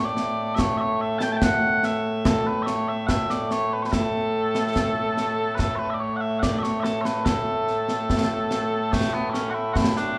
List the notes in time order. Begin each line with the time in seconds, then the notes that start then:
Already playing: A2 A3
0.05 D5
0.17 snare
0.55 E5, concert bass drum, snare
0.59 C#5
0.77 C#5 E5
1.01 E5
1.19 A5, snare
1.23 G5
1.32 A5
1.36 G5
1.42 F#5, concert bass drum, snare
1.83 E5, snare
2.25 A4, concert bass drum, snare
2.46 B4
2.63 C#5 E5
2.67 snare
2.88 E5
3.06 E5 F#5, concert bass drum, snare
3.30 D5, snare
3.51 C#5, snare
3.73 B4
3.83 B4 C#5
3.92 A4, concert bass drum, snare
4.55 snare
4.76 concert bass drum, snare
5.17 snare
5.55 B4
5.59 A4, concert bass drum, snare
5.75 B4 C#5
5.90 E5
5.94 D5
6.00 C#5
6.16 F#5
6.21 E5
6.39 D5 F#5, concert bass drum, snare
6.59 E5
6.63 C#5, snare
6.80 A4 E5
6.85 snare
7.01 C#5
7.05 B4, snare
7.25 A4, concert bass drum, snare
7.68 snare
7.89 snare
8.10 concert bass drum, snare
8.51 snare
8.93 A3, concert bass drum, snare
9.13 B3
9.30 C#4 E4
9.34 snare
9.50 F#4
9.54 E4
9.73 E4 F#4, concert bass drum, snare
9.97 D4, snare